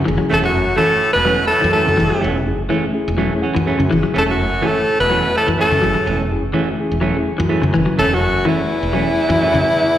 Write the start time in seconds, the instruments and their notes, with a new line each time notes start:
0.05 fretless electric bass F#1, clean electric guitar E3, reed electric piano A3 C#4 E4 G#4
0.18 clean electric guitar F#3
0.30 fretless electric bass E1, bass trombone A2, clean electric guitar E3 A3 C#4, alto saxophone A3 A4
0.41 bass trombone F#2, alto saxophone F#3, clean electric guitar A3 C#4
0.45 alto saxophone F#4
0.57 fretless electric bass F#1
0.76 bass trombone A2, clean electric guitar E3 A3 C#4, alto saxophone A3 A4
1.13 fretless electric bass E1, bass trombone B2, alto saxophone B3 B4
1.25 clean electric guitar E3 F#3 A3 C#4
1.47 bass trombone A2, alto saxophone A3 A4
1.61 fretless electric bass F#2, clean electric guitar E3
1.72 bass trombone A2, clean electric guitar E3 A3 C#4, alto saxophone A3 A4
1.86 fretless electric bass F#2, clean electric guitar C#3
1.97 fretless electric bass F#1, clean electric guitar E3, reed electric piano A3 C#4 E4 G#4
2.10 clean electric guitar F#3
2.20 fretless electric bass E1, clean electric guitar E3 A3 C#4
2.46 fretless electric bass F#1, reed electric piano A3 C#4 E4 G#4
2.69 clean electric guitar E3 A3 C#4, reed electric piano E4 G#4
2.80 reed electric piano E4 G#4
2.93 reed electric piano A3 C#4 E4 G#4
3.08 fretless electric bass E1
3.17 clean electric guitar E3 F#3 A3 C#4, reed electric piano C#5
3.30 reed electric piano A3 C#4 E4 G#4
3.42 clean electric guitar E3 C#4, reed electric piano F#5
3.55 fretless electric bass F#2, clean electric guitar E3
3.65 clean electric guitar E3 A3 C#4, reed electric piano A3 C#4 E4 G#4
3.79 fretless electric bass F#2, clean electric guitar C#3
3.89 fretless electric bass F#1, clean electric guitar E3, reed electric piano A3 C#4 E4 G#4
4.03 clean electric guitar F#3
4.14 fretless electric bass E1, bass trombone A2, clean electric guitar E3 A3 C#4
4.18 alto saxophone A3 A4
4.26 bass trombone F#2, clean electric guitar A3 C#4
4.30 alto saxophone F#3 F#4
4.40 fretless electric bass F#1
4.61 clean electric guitar E3 A3 C#4
4.65 bass trombone A2, alto saxophone A3 A4
5.00 fretless electric bass E1, bass trombone B2, alto saxophone B3 B4
5.10 clean electric guitar E3 F#3 A3 C#4
5.35 bass trombone A2, alto saxophone A3 A4
5.47 fretless electric bass F#2, clean electric guitar E3
5.58 bass trombone A2, clean electric guitar E3 A3 C#4, alto saxophone A4
5.62 alto saxophone A3
5.71 fretless electric bass F#2, clean electric guitar C#3
5.82 fretless electric bass F#1, clean electric guitar F#3, reed electric piano A3 C#4 E4 G#4
5.94 clean electric guitar F#3
6.06 fretless electric bass E1, clean electric guitar E3 A3 C#4
6.31 fretless electric bass F#1, reed electric piano A3 C#4 E4 G#4
6.53 clean electric guitar E3 A3 C#4, reed electric piano E4 G#4
6.67 reed electric piano E4 F#4
6.79 reed electric piano A3 C#4 E4 G#4
6.91 fretless electric bass E1
7.01 clean electric guitar E3 F#3 A3 C#4
7.14 reed electric piano A3 C#4 E4 G#4
7.38 fretless electric bass F#2, clean electric guitar E3
7.49 clean electric guitar E3 A3 C#4, reed electric piano A3 C#4 E4 G#4
7.62 fretless electric bass F#2, clean electric guitar C#3
7.73 fretless electric bass F#1, clean electric guitar E3, reed electric piano A3 C#4 E4 B4
7.86 clean electric guitar F#3
7.97 fretless electric bass E1, bass trombone A2, clean electric guitar E3 A3 C#4, alto saxophone A3 A4
8.13 bass trombone F#2, alto saxophone F#3 F#4
8.22 fretless electric bass F#1
8.45 clean electric guitar E3 A3 C#4, alto saxophone E3 E4
8.51 bass trombone E2
8.83 fretless electric bass E1
8.93 clean electric guitar E3 F#3 A3 C#4
9.29 fretless electric bass F#2, clean electric guitar E3
9.41 clean electric guitar E3 A3 C#4
9.53 fretless electric bass F#2, clean electric guitar C#3